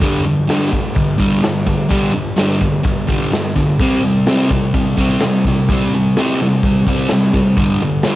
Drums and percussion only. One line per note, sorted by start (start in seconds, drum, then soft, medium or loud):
0.02 kick loud
0.02 open hi-hat medium
0.50 snare loud
0.50 open hi-hat soft
0.73 kick medium
0.96 kick loud
0.96 open hi-hat medium
1.19 kick medium
1.44 snare loud
1.44 open hi-hat medium
1.67 kick medium
1.91 kick loud
1.91 open hi-hat medium
2.38 snare loud
2.38 open hi-hat soft
2.61 kick medium
2.85 kick loud
2.85 open hi-hat medium
3.09 kick medium
3.33 snare loud
3.33 open hi-hat medium
3.56 kick medium
3.80 kick loud
3.80 open hi-hat medium
4.27 snare loud
4.27 open hi-hat medium
4.51 kick medium
4.74 kick loud
4.74 open hi-hat medium
4.98 kick medium
5.21 snare medium
5.21 open hi-hat medium
5.45 kick medium
5.68 kick loud
5.68 open hi-hat medium
6.17 snare medium
6.17 open hi-hat soft
6.62 kick loud
6.62 open hi-hat medium
6.87 kick medium
7.09 snare loud
7.09 open hi-hat soft
7.34 kick medium
7.56 kick loud
7.56 open hi-hat soft
8.03 snare loud
8.03 open hi-hat medium